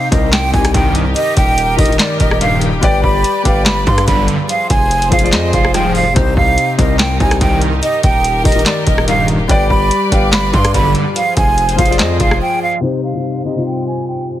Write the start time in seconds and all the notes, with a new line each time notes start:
Already playing: C3 C4 D#4 G4
0.11 C2 C3 C4 D#4 A#4 D#5, kick, closed hi-hat
0.33 G5, snare, clap, closed hi-hat
0.52 C2 C3 C4 D#4 G4 G#5, kick, closed hi-hat
0.65 cross-stick, closed hi-hat
0.74 C2 G2 D#3 G5, kick, closed hi-hat
0.95 closed hi-hat
1.16 D#3 A#4 D#5, closed hi-hat
1.37 D#1 G5, kick, closed hi-hat
1.58 closed hi-hat
1.77 D#1 D#3 D#4 G4 A#4 D#5, kick, closed hi-hat, open hi-hat
1.85 D#3, closed hi-hat
1.90 D#4 G4 A#4, closed hi-hat
1.99 D5, snare, clap, closed hi-hat
2.20 D#1 D#5, kick, closed hi-hat
2.31 cross-stick
2.41 A#1 G2 D#3 F5, closed hi-hat
2.61 closed hi-hat
2.81 G1 G3 G4 B4 D5 G5, kick, closed hi-hat
3.03 G1 B5, kick
3.24 closed hi-hat
3.43 G1 G3 G4 B4 F5 G5, kick, closed hi-hat
3.66 B5, snare, clap, closed hi-hat
3.85 G2 G3 G4 B4 F5 C6, kick, closed hi-hat
3.98 cross-stick, closed hi-hat
4.07 G1 B1 G2 D3 B5, kick, closed hi-hat
4.28 closed hi-hat
4.49 F3 F4 G#4 C5 F5, closed hi-hat
4.70 F1 G#5, kick, closed hi-hat
4.91 closed hi-hat
5.02 closed hi-hat
5.09 F1 F3 F4 G#4 C5 F5, kick, closed hi-hat
5.19 F3 F4, closed hi-hat
5.23 G#4 D5, closed hi-hat
5.33 F2 D#5, snare, clap, closed hi-hat
5.53 F1 F5, kick, closed hi-hat
5.65 cross-stick
5.74 C2 G#2 F3 G5, cross-stick, closed hi-hat
5.95 F5, open hi-hat
6.14 C2 C3 C4 D#4 G4 C5, kick, closed hi-hat
6.37 C2 F5, kick
6.58 closed hi-hat
6.77 C2 C3 C4 D#4 A#4 D#5, kick, closed hi-hat
6.99 G5, snare, clap, closed hi-hat
7.19 C2 C3 C4 D#4 G4 G#5, kick, closed hi-hat
7.31 cross-stick, closed hi-hat
7.41 C2 G2 D#3 G5, kick, closed hi-hat
7.61 closed hi-hat
7.83 D#3 A#4 D#5, closed hi-hat
8.03 D#1 G5, kick, closed hi-hat
8.24 closed hi-hat
8.44 D#1 D#3 D#4 G4 A#4 D#5, kick, closed hi-hat, open hi-hat
8.52 D#3, closed hi-hat
8.56 D#4 G4 A#4, closed hi-hat
8.66 D5, snare, clap, closed hi-hat
8.87 D#1 D#5, kick, closed hi-hat
8.98 cross-stick
9.08 A#1 G2 D#3 F5, closed hi-hat
9.28 closed hi-hat
9.48 G1 G3 G4 B4 D5 G5, kick, closed hi-hat
9.70 G1 B5, kick
9.91 closed hi-hat
10.10 G1 G3 G4 B4 F5 G5, kick, closed hi-hat
10.33 B5, snare, clap, closed hi-hat
10.52 G2 G3 G4 B4 F5 C6, kick, closed hi-hat
10.65 cross-stick, closed hi-hat
10.74 G1 B1 G2 D3 B5, kick, closed hi-hat
10.95 closed hi-hat
11.16 F3 F4 G#4 C5 F5, closed hi-hat
11.37 F1 G#5, kick, closed hi-hat
11.58 closed hi-hat
11.69 closed hi-hat
11.76 F1 F3 F4 G#4 C5 F5, kick, closed hi-hat
11.86 F3 F4, closed hi-hat
11.90 G#4 D5, closed hi-hat
11.99 F2 D#5, snare, clap, closed hi-hat
12.20 F1 F5, kick, closed hi-hat
12.31 cross-stick
12.42 G5
12.62 F5
12.80 C3 G3 C4 D#4 G4 C5
13.03 F5
13.14 C3 C4 D#4 G4
13.44 C3 C4 D#4 G4 D#5
13.55 C3 C4 D#4 F4
13.66 G5
13.87 G#5
14.08 G5